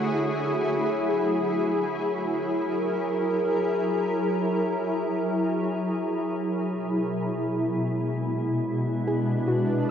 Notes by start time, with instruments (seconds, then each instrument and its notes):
Already playing: ambient pad D3 A3 E4 F#4 G#4 C#5
0.21 ambient pad F#3
1.60 ambient pad A#4
6.64 ambient pad B2
7.58 ambient pad G#3
8.71 ambient pad D4 B4
9.07 synth pluck G#4
9.48 synth pluck F#4